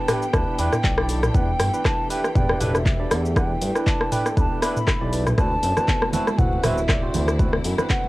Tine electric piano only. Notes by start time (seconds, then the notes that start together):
0.08 D4 E4 G4 B4
0.33 D4 E4 G4 B4
0.59 D4 E4 G4 B4
0.98 D4 E4 G4 D5
1.35 D4 E4 G4 B4
1.74 D4 E4 G4 B4
2.10 D4 E4 G4 B4
2.35 D4 E4 G4 B4
2.61 D4 E4 G4 B4
3.00 D4 E4 G4 D5
3.36 D4 E4 G4 B4
3.76 D4 E4 G4 B4
4.12 D4 E4 G4 B4
4.37 D4 E4 G4 B4
4.62 D4 E4 G4 B4
5.01 D4 E4 G4 D5
5.38 C4 E4 F#4 B4
5.77 C4 E4 F#4 B4
6.13 C4 E4 F#4 B4
6.39 C4 E4 F#4 B4
6.64 C4 E4 F#4 B4
7.03 C4 E4 F#4 C5
7.39 C4 E4 F#4 B4
7.79 C4 E4 F#4 B4